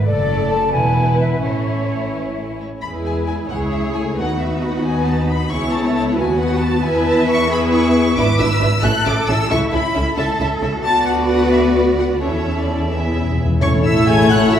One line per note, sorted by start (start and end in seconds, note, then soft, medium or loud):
0.05 0.70 F#1 medium
0.05 0.70 F#2 medium
0.05 0.69 A3 medium
0.05 0.69 A4 medium
0.05 0.73 A4 medium
0.05 0.70 D5 medium
0.05 0.48 D5 medium
0.50 0.72 A5 medium
0.72 1.43 E1 medium
0.72 1.44 E2 medium
0.72 1.44 B3 medium
0.72 1.43 E4 medium
0.72 1.43 B4 medium
0.72 1.42 B4 medium
0.72 1.19 G#5 medium
1.20 1.42 E5 medium
1.43 2.61 A1 soft
1.43 2.61 A2 soft
1.43 2.61 C#4 soft
1.43 2.61 E4 soft
1.43 2.08 A4 soft
1.43 2.49 C#5 soft
1.43 2.58 E5 soft
2.13 2.21 B4 soft
2.37 2.45 A4 soft
2.61 2.69 C#5 soft
2.82 3.47 E2 soft
2.82 3.47 G#3 soft
2.82 3.47 E4 soft
2.82 3.47 G#4 soft
2.82 3.48 B4 soft
2.82 2.90 B5 medium
3.05 3.13 G#5 medium
3.27 3.35 G#5 medium
3.50 4.18 C#2 soft
3.50 3.84 G#3 soft
3.50 4.17 E4 soft
3.50 4.14 G#4 medium
3.50 4.17 G#4 soft
3.50 4.19 C#5 soft
3.50 3.58 F#5 medium
3.72 3.80 E5 medium
3.84 4.18 A3 soft
3.95 4.03 G#5 medium
4.17 5.52 D#2 medium
4.17 5.51 B3 soft
4.17 5.48 D#4 soft
4.17 4.85 F#4 medium
4.17 5.52 F#4 medium
4.17 5.52 B4 medium
4.17 4.40 F#5 medium
4.40 4.62 E5 medium
4.62 4.85 F#5 medium
4.85 5.52 D#4 medium
4.85 5.06 G#5 medium
5.06 5.29 A5 medium
5.28 5.51 B5 medium
5.51 6.17 C#2 medium
5.51 6.16 B3 medium
5.51 6.17 E4 medium
5.51 5.84 G#4 medium
5.51 6.16 C#5 medium
5.51 5.74 C#6 medium
5.73 5.95 A5 medium
5.84 6.17 A4 medium
5.96 6.04 A5 medium
6.16 6.84 D#2 medium
6.16 6.82 B3 medium
6.16 6.84 F#4 medium
6.16 6.82 B4 medium
6.16 6.40 G#5 medium
6.38 6.61 F#5 medium
6.61 6.84 A5 medium
6.83 8.14 E2 medium
6.83 7.49 B3 medium
6.83 7.49 E4 medium
6.83 7.48 B4 medium
6.83 7.49 B4 medium
6.83 7.49 E5 medium
6.83 7.06 G#5 medium
7.07 7.28 A5 medium
7.29 7.51 C#6 loud
7.50 8.15 B3 medium
7.50 8.15 E4 medium
7.50 8.17 G#4 medium
7.50 8.15 B4 medium
7.50 8.15 E5 medium
7.50 7.60 B5 medium
7.73 8.16 C#6 medium
8.16 8.24 G#1 medium
8.16 8.24 D4 medium
8.16 8.24 E4 medium
8.16 8.82 B4 medium
8.16 8.25 B4 medium
8.16 8.25 E5 medium
8.16 8.39 D6 loud
8.38 8.47 G#1 medium
8.38 8.46 D4 medium
8.38 8.46 E4 medium
8.38 8.47 B4 medium
8.38 8.47 E5 medium
8.38 8.83 E6 loud
8.60 8.69 G#1 medium
8.60 8.69 D4 medium
8.60 8.68 E4 medium
8.60 8.69 B4 medium
8.60 8.68 E5 medium
8.82 8.91 A1 medium
8.82 8.91 C#4 medium
8.82 8.92 E4 medium
8.82 8.90 A4 medium
8.82 9.48 A4 medium
8.82 8.90 E5 medium
8.82 9.05 F#6 loud
9.05 9.14 A1 medium
9.05 9.13 C#4 medium
9.05 9.14 E4 medium
9.05 9.14 A4 medium
9.05 9.14 E5 medium
9.05 9.28 D6 loud
9.28 9.36 A1 medium
9.28 9.36 C#4 medium
9.28 9.36 E4 medium
9.28 9.37 A4 medium
9.28 9.37 E5 medium
9.28 9.50 E6 loud
9.49 9.59 C#2 medium
9.49 9.57 C#4 medium
9.49 10.16 E4 medium
9.49 9.57 E4 medium
9.49 9.59 A4 medium
9.49 9.59 E5 medium
9.49 9.59 C#6 loud
9.72 9.81 C#2 medium
9.72 9.80 C#4 medium
9.72 9.81 E4 medium
9.72 9.80 A4 medium
9.72 9.80 E5 medium
9.72 10.16 B5 medium
9.95 10.03 C#2 medium
9.95 10.03 C#4 medium
9.95 10.03 E4 medium
9.95 10.04 A4 medium
9.95 10.03 E5 medium
10.16 10.25 C#2 medium
10.16 10.25 C#4 medium
10.16 10.25 E4 medium
10.16 10.83 A4 medium
10.16 10.26 A4 medium
10.16 10.26 E5 medium
10.16 10.39 A5 medium
10.39 10.47 C#2 medium
10.39 10.48 C#4 medium
10.39 10.48 E4 medium
10.39 10.49 A4 medium
10.39 10.49 E5 medium
10.61 10.69 C#2 medium
10.61 10.69 C#4 medium
10.61 10.69 E4 medium
10.61 10.70 A4 soft
10.61 10.71 E5 medium
10.84 12.19 D2 medium
10.84 12.20 B3 medium
10.84 12.23 F#4 medium
10.84 12.20 F#4 medium
10.84 12.19 B4 medium
10.84 12.19 D5 medium
10.84 11.05 A5 loud
11.06 11.14 F#5 medium
11.29 11.52 F#5 medium
11.52 11.60 E5 medium
11.76 11.84 D5 medium
11.98 12.06 F#5 medium
12.22 13.42 E2 medium
12.22 13.25 C#4 soft
12.22 12.92 C#4 soft
12.22 12.91 E4 soft
12.22 12.93 A4 medium
12.22 12.57 C#5 soft
12.22 12.91 E5 medium
12.59 12.94 D5 soft
12.92 13.00 E2 soft
12.92 13.41 B3 soft
12.92 13.41 E4 soft
12.92 13.43 G#4 soft
12.92 13.43 E5 soft
13.01 13.07 E2 soft
13.08 13.14 E2 soft
13.16 13.22 E2 soft
13.24 13.30 E2 soft
13.31 13.36 E2 medium
13.37 13.44 E2 medium
13.46 13.54 E2 medium
13.61 14.60 A1 medium
13.61 14.26 A2 medium
13.61 14.60 A2 medium
13.61 14.60 A3 medium
13.61 13.84 C#4 medium
13.61 14.60 E4 medium
13.61 14.60 A4 medium
13.61 13.67 C#5 medium
13.61 14.60 C#5 medium
13.61 13.73 C#5 medium
13.61 13.70 C#6 medium
13.84 14.08 E4 medium
13.84 14.08 E5 medium
13.84 14.07 E6 medium
14.07 14.30 G#4 medium
14.07 14.32 G#5 medium
14.07 14.19 G#5 medium
14.07 14.30 G#6 loud
14.30 14.53 F#4 medium
14.30 14.51 F#5 medium
14.30 14.41 F#5 medium
14.30 14.53 F#6 medium
14.51 14.60 E4 medium
14.51 14.60 E5 medium
14.51 14.60 E6 medium